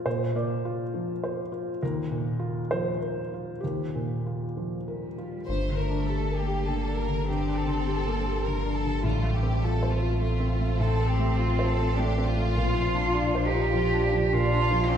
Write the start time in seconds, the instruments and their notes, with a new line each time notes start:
Already playing: felt piano F4
0.06 felt piano A#2 C5
0.35 felt piano A#3 D5
0.65 felt piano F4
0.94 felt piano F3
1.24 felt piano C5
1.52 felt piano F4
1.82 felt piano D#2 A#4
2.11 felt piano A#2
2.40 felt piano F4
2.71 felt piano F3 C5
3.00 felt piano A#4
3.34 felt piano F4
3.60 felt piano D#2 G4
3.95 felt piano A#2
4.26 felt piano F4
4.57 felt piano F3
4.86 cello G3, felt piano A#4
5.18 felt piano F4
5.47 sub bass G1, felt piano G2, cello A3, ambient pad D4 G4 D5, violin section C5
5.69 felt piano D3
5.77 violin section A#4
5.90 felt piano D4
6.07 felt piano G4, violin section A4
6.30 felt piano A#4
6.37 cello A#3, violin section G4
6.47 felt piano G4
6.67 felt piano D3, violin section A4
6.88 felt piano D4
6.98 violin section A#4
7.08 felt piano D3
7.27 felt piano G2, cello C4, violin section G4
7.48 felt piano D4
7.56 violin section A4
7.67 felt piano D3
7.88 felt piano G4
8.07 felt piano A#3
8.27 felt piano G4
8.44 felt piano D3, cello F3, violin section A#4
8.66 felt piano D4
8.74 violin section A4
8.84 felt piano D3
9.03 sub bass A1, felt piano A2, cello G3, ambient pad C4 F4 C5, violin section F4
9.23 felt piano A3
9.34 violin section G4
9.43 felt piano C4
9.63 felt piano F4, violin section A4
9.83 felt piano C5
9.92 cello A3, violin section F4
10.03 felt piano F4
10.21 felt piano A3, violin section F4
10.40 felt piano C4
10.60 felt piano A3
10.79 felt piano A2, cello C4, violin section A4
10.99 felt piano C4
11.07 violin section G4
11.19 felt piano A3
11.37 violin section F4, felt piano F4
11.59 felt piano C5
11.67 violin section A4
11.79 felt piano F4
11.96 felt piano A3, cello D4, violin section G4
12.18 felt piano C4
12.26 violin section F4
12.37 felt piano A3
12.55 sub bass A#1, felt piano A#2, cello F4, ambient pad F4 C5 D5
12.74 felt piano F3
12.95 felt piano D4
13.15 violin section D4, felt piano F4
13.35 felt piano C5
13.45 violin section D#4, cello G4
13.55 felt piano F4
13.73 felt piano F3, violin section F4
13.93 felt piano D4
14.03 violin section D4
14.13 felt piano F3
14.33 felt piano A#2, violin section D4, cello F4
14.53 felt piano D4
14.61 violin section F4
14.71 felt piano F3
14.89 cello C4, felt piano F4, violin section G4